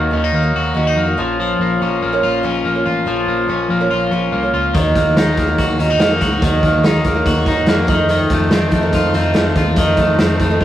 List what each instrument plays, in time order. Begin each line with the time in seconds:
Already playing: clean electric guitar D#3 A#3 D#4 F#4, twelve-string acoustic guitar A#3 D#4
0.10 picked electric bass D#2, twelve-string acoustic guitar D#3 F#3 A#3 D#4, clean electric guitar C#4
0.24 clean electric guitar D#4
0.33 picked electric bass D#2, clean electric guitar A#3
0.42 twelve-string acoustic guitar D#3 F#3 A#3 D#4
0.54 picked electric bass D#2, clean electric guitar F#4
0.74 picked electric bass D#2, twelve-string acoustic guitar D#3 F#3 A#3 D#4, clean electric guitar C#4
0.87 clean electric guitar D#4
0.96 picked electric bass F2, clean electric guitar A#3
1.06 twelve-string acoustic guitar F#3 A#3 D#4
1.17 picked electric bass A#1, twelve-string acoustic guitar A#2 F3 A#3 C#4, clean electric guitar F3
1.40 clean electric guitar F3
1.60 picked electric bass A#1, clean electric guitar A#3
1.81 picked electric bass A#1, twelve-string acoustic guitar A#2 F3 A#3 C#4, clean electric guitar C#4
2.02 picked electric bass A#1, clean electric guitar A#3
2.13 twelve-string acoustic guitar A#2 F3 A#3 C#4
2.23 picked electric bass A#1, clean electric guitar F4
2.43 picked electric bass A#1, twelve-string acoustic guitar A#2 F3 A#3 C#4, clean electric guitar C#4
2.65 picked electric bass A#1, clean electric guitar A#3
2.75 twelve-string acoustic guitar F3 A#3 C#4
2.86 picked electric bass A1, clean electric guitar F4
3.06 picked electric bass A#1, twelve-string acoustic guitar A#2 F3 A#3 C#4, clean electric guitar F3
3.27 picked electric bass A#1, clean electric guitar A#3
3.48 picked electric bass A#1, twelve-string acoustic guitar A#2 F3 A#3 C#4, clean electric guitar C#4
3.69 picked electric bass A#1, clean electric guitar A#3
3.81 twelve-string acoustic guitar A#2 F3 A#3 C#4
3.90 picked electric bass A#1, clean electric guitar F4
4.11 picked electric bass A#1, twelve-string acoustic guitar A#2 F3 A#3 C#4, clean electric guitar C#4
4.32 picked electric bass C2, clean electric guitar A#3
4.42 twelve-string acoustic guitar F3 A#3 C#4
4.54 picked electric bass C#2, clean electric guitar F4
4.74 picked electric bass D#2, twelve-string acoustic guitar D#3 F#3 A#3 D#4, clean electric guitar D#3, kick, closed hi-hat
4.96 picked electric bass D#2, clean electric guitar A#3, kick, closed hi-hat
5.16 picked electric bass D#2, twelve-string acoustic guitar D#3 F#3 A#3 D#4, clean electric guitar D#4, snare, closed hi-hat
5.37 picked electric bass D#2, clean electric guitar A#3, kick, closed hi-hat
5.47 twelve-string acoustic guitar D#3 F#3 A#3 D#4
5.58 picked electric bass D#2, clean electric guitar F#4, kick, closed hi-hat
5.78 picked electric bass D#2, twelve-string acoustic guitar D#3 F#3 A#3 D#4, clean electric guitar C#4, closed hi-hat
5.90 clean electric guitar D#4
5.99 picked electric bass F2, clean electric guitar A#3, snare, closed hi-hat
6.10 twelve-string acoustic guitar F#3 A#3 D#4
6.21 picked electric bass C#2, clean electric guitar F#4, kick, closed hi-hat
6.40 picked electric bass D#2, twelve-string acoustic guitar D#3 F#3 A#3 D#4, clean electric guitar D#3, kick, closed hi-hat
6.63 picked electric bass D#2, clean electric guitar A#3, kick, closed hi-hat
6.83 picked electric bass D#2, twelve-string acoustic guitar D#3 F#3 A#3 D#4, clean electric guitar D#4, snare, closed hi-hat
7.04 picked electric bass D#2, clean electric guitar A#3, kick, closed hi-hat
7.15 twelve-string acoustic guitar D#3 F#3 A#3 D#4
7.26 picked electric bass D#2, clean electric guitar F#4, kick, closed hi-hat
7.46 picked electric bass D#2, twelve-string acoustic guitar D#3 F#3 A#3 D#4, clean electric guitar D#4, kick, closed hi-hat
7.66 picked electric bass F2, clean electric guitar A#3, snare, closed hi-hat
7.76 twelve-string acoustic guitar A#3 D#4
7.87 twelve-string acoustic guitar F2 C3 D#3 A3 D#4, picked electric bass F2, clean electric guitar D#3, kick, closed hi-hat
8.09 clean electric guitar D#3, closed hi-hat
8.30 picked electric bass F2, clean electric guitar A3, kick, closed hi-hat
8.50 picked electric bass F2, twelve-string acoustic guitar C3 D#3 A3 D#4, clean electric guitar C4, snare, closed hi-hat
8.71 picked electric bass F2, clean electric guitar A3, kick, closed hi-hat
8.81 twelve-string acoustic guitar F2 C3 D#3 A3 D#4
8.93 picked electric bass F2, clean electric guitar F4, kick, closed hi-hat
9.13 picked electric bass F2, twelve-string acoustic guitar C3 D#3 A3 D#4, clean electric guitar C4, closed hi-hat
9.34 picked electric bass F2, clean electric guitar A3, snare, closed hi-hat
9.45 twelve-string acoustic guitar D#3 A3 D#4
9.56 picked electric bass D#2, clean electric guitar F4, kick, closed hi-hat
9.76 picked electric bass F2, twelve-string acoustic guitar C3 D#3 A3 D#4, clean electric guitar D#3, kick, closed hi-hat
9.97 picked electric bass F2, clean electric guitar A3, kick, closed hi-hat
10.19 picked electric bass F2, twelve-string acoustic guitar C3 D#3 A3 D#4, clean electric guitar C4, snare, closed hi-hat
10.39 picked electric bass F2, clean electric guitar A3, kick, closed hi-hat
10.51 twelve-string acoustic guitar F2 C3 D#3 A3 D#4
10.60 picked electric bass F2, kick, snare